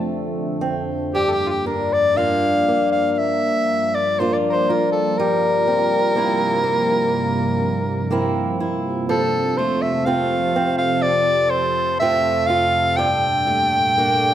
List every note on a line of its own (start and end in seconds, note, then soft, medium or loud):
0.00 1.10 F2 medium
0.00 1.12 D3 medium
0.00 1.14 F3 medium
0.00 1.10 A3 medium
0.00 1.24 A3 medium
0.00 0.60 C4 medium
0.00 2.18 F4 medium
0.61 1.24 C4 soft
1.14 5.19 G2 medium
1.14 9.06 G2 medium
1.14 3.18 F3 medium
1.14 9.06 A#3 medium
1.14 1.30 G4 medium
1.28 1.48 G4 medium
1.28 1.33 A4 medium
1.46 1.50 F4 medium
1.46 1.66 G4 medium
1.66 2.17 D4 soft
1.66 1.94 A#4 medium
1.93 2.18 D5 medium
2.17 2.68 A#3 medium
2.17 4.19 D4 soft
2.17 4.20 F4 medium
2.17 2.91 F5 medium
2.68 4.19 A#3 soft
2.92 3.12 F5 medium
3.12 3.19 F5 medium
3.18 9.06 F3 medium
3.18 3.96 E5 medium
3.94 4.21 D5 medium
4.19 5.70 A#3 medium
4.19 5.29 D4 soft
4.19 4.69 F4 medium
4.19 4.35 C5 medium
4.33 4.36 D5 medium
4.50 4.53 A#4 medium
4.50 4.70 C5 medium
4.69 5.28 F4 medium
4.69 4.91 A#4 medium
4.92 5.19 A4 medium
5.18 12.95 C3 medium
5.18 9.09 G3 medium
5.18 8.60 A#4 medium
5.67 6.16 C4 medium
6.16 6.63 A#3 medium
6.16 8.11 C4 medium
6.16 8.11 E4 medium
6.64 8.09 A#3 medium
8.11 9.18 A#3 medium
8.11 9.58 C4 medium
8.11 8.59 E4 medium
8.60 9.19 E4 medium
9.09 12.95 F2 medium
9.09 12.98 F3 medium
9.09 9.59 A4 medium
9.09 14.34 A4 medium
9.57 10.07 A3 medium
9.57 9.83 C5 medium
9.82 10.06 E5 medium
10.05 12.01 A3 medium
10.05 10.55 C4 medium
10.05 12.01 F4 medium
10.05 10.77 F5 medium
10.56 12.00 C4 medium
10.78 11.03 F5 medium
11.02 11.52 D5 medium
11.50 11.99 C5 medium
11.99 13.47 A3 medium
11.99 13.08 C4 medium
11.99 12.48 F4 medium
11.99 12.48 E5 medium
12.47 13.08 F4 medium
12.47 12.98 F5 medium
12.96 14.34 G2 medium
12.96 14.34 A#2 medium
12.96 14.34 G3 medium
12.96 14.34 G5 loud
13.47 13.98 A3 medium
13.98 14.34 A3 medium
13.98 14.34 A#3 medium
13.98 14.34 D4 medium